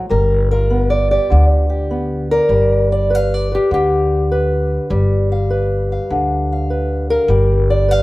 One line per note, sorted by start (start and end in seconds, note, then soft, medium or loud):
0.00 0.10 C4 soft
0.00 0.10 F#4 medium
0.09 1.17 G1 medium
0.09 2.50 G3 medium
0.09 0.50 A#4 medium
0.51 2.53 F4 soft
0.51 0.91 A#4 loud
0.70 1.90 B3 medium
0.90 1.10 D5 medium
1.11 1.69 G4 soft
1.11 1.45 D5 medium
1.30 2.37 D2 medium
1.30 2.48 D3 medium
1.70 2.31 G4 soft
1.91 2.50 B3 medium
2.31 2.91 A#4 loud
2.31 2.92 D5 soft
2.49 3.56 G1 medium
2.49 3.54 G3 medium
2.92 3.15 D5 medium
3.10 3.51 B4 medium
3.15 3.34 F5 medium
3.34 3.52 D5 medium
3.52 3.73 G4 medium
3.52 4.31 B4 soft
3.71 4.77 D2 medium
3.71 4.91 D3 medium
3.71 4.90 G4 medium
4.32 5.35 B4 medium
4.90 5.96 G1 medium
4.90 7.29 G3 medium
5.32 5.92 F5 medium
5.50 6.69 B4 medium
5.92 6.51 F5 soft
6.11 7.16 D2 medium
6.11 7.30 D3 medium
6.53 7.10 F5 soft
6.70 7.10 B4 medium
7.10 7.70 A#4 loud
7.10 7.28 F5 soft
7.28 8.03 G1 medium
7.28 8.03 G3 medium
7.70 7.91 D5 medium
7.88 8.03 B4 medium
7.88 8.03 F5 medium